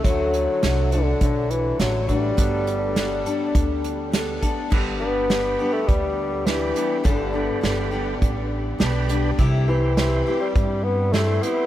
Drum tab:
CC |--------|--------|x-------|--------|
HH |xxxxxxxx|xxxxxxxx|--x-x-xx|x-x-x-xx|
SD |--o---o-|--o---o-|--o---o-|--o---o-|
BD |o---o--o|o---o--o|o---o---|o---o---|

CC |--------|
HH |x-x-x-xx|
SD |--o---o-|
BD |o---o---|